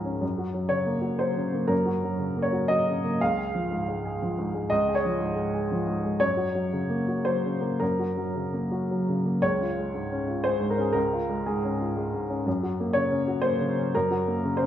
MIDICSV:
0, 0, Header, 1, 2, 480
1, 0, Start_track
1, 0, Key_signature, -5, "major"
1, 0, Tempo, 500000
1, 215, Time_signature, 3, 2, 24, 8
1, 5975, Tempo, 530973
1, 9335, Tempo, 508906
1, 10775, Tempo, 495868
1, 13869, End_track
2, 0, Start_track
2, 0, Title_t, "Upright piano"
2, 0, Program_c, 0, 0
2, 0, Control_c, 0, 64, 127
2, 0, Note_on_c, 0, 37, 37
2, 0, Note_on_c, 0, 44, 31
2, 0, Note_on_c, 0, 53, 31
2, 0, Note_on_c, 0, 61, 29
2, 0, Note_on_c, 0, 68, 28
2, 0, Note_on_c, 0, 70, 57
2, 50, Note_off_c, 0, 61, 0
2, 50, Note_on_c, 0, 61, 29
2, 139, Note_off_c, 0, 44, 0
2, 172, Note_off_c, 0, 37, 0
2, 206, Note_on_c, 0, 42, 41
2, 212, Note_off_c, 0, 61, 0
2, 231, Control_c, 0, 64, 0
2, 237, Note_off_c, 0, 53, 0
2, 237, Note_off_c, 0, 70, 0
2, 241, Note_off_c, 0, 68, 0
2, 365, Note_on_c, 0, 66, 31
2, 404, Control_c, 0, 64, 127
2, 521, Note_on_c, 0, 54, 29
2, 625, Note_off_c, 0, 66, 0
2, 660, Note_on_c, 0, 73, 63
2, 672, Note_on_c, 0, 49, 28
2, 782, Note_off_c, 0, 54, 0
2, 830, Note_on_c, 0, 58, 33
2, 936, Note_off_c, 0, 49, 0
2, 975, Note_on_c, 0, 66, 30
2, 1094, Note_off_c, 0, 58, 0
2, 1141, Note_on_c, 0, 72, 55
2, 1145, Note_on_c, 0, 54, 33
2, 1152, Note_off_c, 0, 73, 0
2, 1246, Note_off_c, 0, 66, 0
2, 1316, Note_on_c, 0, 49, 31
2, 1410, Note_off_c, 0, 54, 0
2, 1473, Note_on_c, 0, 58, 32
2, 1576, Note_off_c, 0, 49, 0
2, 1603, Note_off_c, 0, 42, 0
2, 1608, Note_on_c, 0, 70, 61
2, 1617, Note_on_c, 0, 42, 40
2, 1632, Note_off_c, 0, 72, 0
2, 1663, Control_c, 0, 64, 0
2, 1736, Note_off_c, 0, 58, 0
2, 1783, Note_on_c, 0, 66, 34
2, 1810, Control_c, 0, 64, 127
2, 1961, Note_on_c, 0, 54, 32
2, 2051, Note_off_c, 0, 66, 0
2, 2101, Note_on_c, 0, 49, 32
2, 2218, Note_off_c, 0, 54, 0
2, 2274, Note_on_c, 0, 58, 33
2, 2327, Note_on_c, 0, 73, 58
2, 2345, Note_off_c, 0, 70, 0
2, 2368, Note_off_c, 0, 49, 0
2, 2426, Note_on_c, 0, 66, 31
2, 2534, Note_off_c, 0, 58, 0
2, 2575, Note_on_c, 0, 75, 70
2, 2585, Note_off_c, 0, 73, 0
2, 2592, Note_on_c, 0, 54, 33
2, 2690, Note_off_c, 0, 66, 0
2, 2779, Note_on_c, 0, 49, 35
2, 2852, Note_off_c, 0, 54, 0
2, 2921, Note_on_c, 0, 58, 32
2, 3023, Note_off_c, 0, 49, 0
2, 3025, Note_off_c, 0, 42, 0
2, 3063, Note_off_c, 0, 75, 0
2, 3078, Note_off_c, 0, 58, 0
2, 3084, Note_on_c, 0, 77, 66
2, 3094, Control_c, 0, 64, 0
2, 3096, Note_on_c, 0, 37, 46
2, 3237, Note_on_c, 0, 68, 37
2, 3249, Control_c, 0, 64, 127
2, 3404, Note_on_c, 0, 53, 36
2, 3491, Note_off_c, 0, 68, 0
2, 3562, Note_on_c, 0, 44, 33
2, 3656, Note_off_c, 0, 53, 0
2, 3725, Note_on_c, 0, 56, 35
2, 3815, Note_off_c, 0, 44, 0
2, 3891, Note_on_c, 0, 68, 34
2, 3977, Note_off_c, 0, 56, 0
2, 4053, Note_on_c, 0, 53, 36
2, 4139, Note_off_c, 0, 68, 0
2, 4211, Note_on_c, 0, 44, 36
2, 4300, Note_off_c, 0, 53, 0
2, 4360, Note_on_c, 0, 56, 36
2, 4459, Note_off_c, 0, 44, 0
2, 4486, Note_off_c, 0, 37, 0
2, 4509, Note_on_c, 0, 75, 73
2, 4518, Note_off_c, 0, 77, 0
2, 4522, Note_on_c, 0, 37, 47
2, 4533, Control_c, 0, 64, 0
2, 4614, Note_off_c, 0, 56, 0
2, 4691, Note_on_c, 0, 68, 39
2, 4715, Control_c, 0, 64, 127
2, 4751, Note_on_c, 0, 73, 65
2, 4755, Note_off_c, 0, 75, 0
2, 4846, Note_on_c, 0, 53, 37
2, 4944, Note_off_c, 0, 68, 0
2, 4990, Note_on_c, 0, 44, 38
2, 5103, Note_off_c, 0, 53, 0
2, 5143, Note_on_c, 0, 56, 39
2, 5256, Note_off_c, 0, 44, 0
2, 5315, Note_on_c, 0, 68, 39
2, 5414, Note_off_c, 0, 56, 0
2, 5486, Note_off_c, 0, 73, 0
2, 5486, Note_on_c, 0, 53, 37
2, 5581, Note_off_c, 0, 68, 0
2, 5639, Note_on_c, 0, 44, 37
2, 5747, Note_off_c, 0, 53, 0
2, 5796, Note_on_c, 0, 56, 35
2, 5904, Note_off_c, 0, 44, 0
2, 5940, Note_off_c, 0, 37, 0
2, 5950, Note_on_c, 0, 73, 80
2, 5958, Note_on_c, 0, 42, 44
2, 5966, Note_off_c, 0, 56, 0
2, 5993, Control_c, 0, 64, 0
2, 6108, Note_on_c, 0, 66, 36
2, 6167, Control_c, 0, 64, 127
2, 6271, Note_on_c, 0, 54, 36
2, 6368, Note_off_c, 0, 66, 0
2, 6430, Note_on_c, 0, 49, 35
2, 6530, Note_off_c, 0, 54, 0
2, 6583, Note_on_c, 0, 58, 37
2, 6690, Note_off_c, 0, 49, 0
2, 6751, Note_on_c, 0, 66, 33
2, 6847, Note_off_c, 0, 58, 0
2, 6901, Note_on_c, 0, 72, 66
2, 6908, Note_off_c, 0, 73, 0
2, 6914, Note_on_c, 0, 54, 33
2, 7012, Note_off_c, 0, 66, 0
2, 7087, Note_on_c, 0, 49, 32
2, 7176, Note_off_c, 0, 54, 0
2, 7227, Note_on_c, 0, 58, 33
2, 7346, Note_off_c, 0, 49, 0
2, 7364, Note_off_c, 0, 42, 0
2, 7396, Note_on_c, 0, 70, 62
2, 7399, Note_off_c, 0, 72, 0
2, 7410, Note_on_c, 0, 42, 41
2, 7426, Control_c, 0, 64, 0
2, 7498, Note_off_c, 0, 58, 0
2, 7575, Note_on_c, 0, 66, 33
2, 7594, Control_c, 0, 64, 127
2, 7738, Note_on_c, 0, 54, 30
2, 7836, Note_off_c, 0, 66, 0
2, 7901, Note_on_c, 0, 49, 30
2, 7999, Note_off_c, 0, 54, 0
2, 8066, Note_on_c, 0, 58, 33
2, 8162, Note_off_c, 0, 49, 0
2, 8227, Note_on_c, 0, 66, 31
2, 8325, Note_off_c, 0, 58, 0
2, 8405, Note_on_c, 0, 54, 31
2, 8485, Note_off_c, 0, 66, 0
2, 8563, Note_on_c, 0, 49, 33
2, 8624, Note_off_c, 0, 70, 0
2, 8655, Note_off_c, 0, 54, 0
2, 8716, Note_on_c, 0, 58, 30
2, 8813, Note_off_c, 0, 49, 0
2, 8833, Note_off_c, 0, 42, 0
2, 8864, Note_on_c, 0, 73, 72
2, 8871, Note_off_c, 0, 58, 0
2, 8873, Note_on_c, 0, 37, 45
2, 8887, Control_c, 0, 64, 0
2, 9035, Control_c, 0, 64, 127
2, 9036, Note_on_c, 0, 65, 37
2, 9187, Note_on_c, 0, 56, 32
2, 9279, Note_off_c, 0, 65, 0
2, 9336, Note_on_c, 0, 44, 34
2, 9436, Note_off_c, 0, 56, 0
2, 9506, Note_on_c, 0, 61, 35
2, 9592, Note_off_c, 0, 44, 0
2, 9653, Note_on_c, 0, 65, 33
2, 9755, Note_off_c, 0, 61, 0
2, 9803, Note_on_c, 0, 72, 69
2, 9811, Note_off_c, 0, 73, 0
2, 9816, Note_on_c, 0, 56, 36
2, 9907, Note_off_c, 0, 65, 0
2, 9959, Note_on_c, 0, 44, 33
2, 10047, Note_off_c, 0, 72, 0
2, 10053, Note_on_c, 0, 70, 50
2, 10070, Note_off_c, 0, 56, 0
2, 10119, Note_on_c, 0, 61, 35
2, 10148, Note_on_c, 0, 68, 48
2, 10173, Note_off_c, 0, 70, 0
2, 10223, Note_off_c, 0, 44, 0
2, 10260, Note_off_c, 0, 37, 0
2, 10265, Note_on_c, 0, 70, 68
2, 10282, Note_off_c, 0, 68, 0
2, 10282, Note_on_c, 0, 37, 46
2, 10314, Control_c, 0, 64, 0
2, 10385, Note_off_c, 0, 61, 0
2, 10459, Note_on_c, 0, 65, 39
2, 10494, Control_c, 0, 64, 127
2, 10611, Note_on_c, 0, 56, 32
2, 10713, Note_off_c, 0, 65, 0
2, 10760, Note_off_c, 0, 70, 0
2, 10770, Note_on_c, 0, 68, 58
2, 10785, Note_on_c, 0, 44, 35
2, 10868, Note_off_c, 0, 56, 0
2, 10947, Note_on_c, 0, 61, 33
2, 11036, Note_off_c, 0, 44, 0
2, 11097, Note_on_c, 0, 65, 32
2, 11197, Note_off_c, 0, 61, 0
2, 11259, Note_on_c, 0, 56, 36
2, 11354, Note_off_c, 0, 65, 0
2, 11427, Note_on_c, 0, 44, 36
2, 11495, Note_off_c, 0, 68, 0
2, 11515, Note_off_c, 0, 56, 0
2, 11579, Note_on_c, 0, 61, 34
2, 11678, Note_off_c, 0, 44, 0
2, 11691, Note_off_c, 0, 37, 0
2, 11738, Note_off_c, 0, 61, 0
2, 11742, Note_on_c, 0, 42, 47
2, 11755, Control_c, 0, 64, 0
2, 11892, Control_c, 0, 64, 127
2, 11901, Note_on_c, 0, 66, 36
2, 12067, Note_on_c, 0, 58, 36
2, 12152, Note_off_c, 0, 66, 0
2, 12195, Note_on_c, 0, 73, 71
2, 12211, Note_on_c, 0, 49, 35
2, 12315, Note_off_c, 0, 58, 0
2, 12367, Note_on_c, 0, 61, 35
2, 12467, Note_off_c, 0, 49, 0
2, 12526, Note_on_c, 0, 66, 36
2, 12624, Note_off_c, 0, 61, 0
2, 12660, Note_on_c, 0, 72, 70
2, 12679, Note_on_c, 0, 58, 40
2, 12681, Note_off_c, 0, 73, 0
2, 12783, Note_off_c, 0, 66, 0
2, 12842, Note_on_c, 0, 49, 37
2, 12940, Note_off_c, 0, 58, 0
2, 13017, Note_on_c, 0, 61, 36
2, 13102, Note_off_c, 0, 49, 0
2, 13133, Note_off_c, 0, 42, 0
2, 13155, Note_off_c, 0, 72, 0
2, 13175, Note_on_c, 0, 70, 71
2, 13178, Note_on_c, 0, 42, 52
2, 13185, Control_c, 0, 64, 0
2, 13270, Note_off_c, 0, 61, 0
2, 13318, Control_c, 0, 64, 127
2, 13331, Note_on_c, 0, 66, 42
2, 13494, Note_on_c, 0, 58, 39
2, 13589, Note_off_c, 0, 66, 0
2, 13657, Note_on_c, 0, 49, 38
2, 13752, Note_off_c, 0, 58, 0
2, 13777, Note_off_c, 0, 70, 0
2, 13777, Note_on_c, 0, 72, 58
2, 13828, Note_on_c, 0, 61, 39
2, 13869, Note_off_c, 0, 42, 0
2, 13869, Note_off_c, 0, 49, 0
2, 13869, Note_off_c, 0, 61, 0
2, 13869, Note_off_c, 0, 72, 0
2, 13869, End_track
0, 0, End_of_file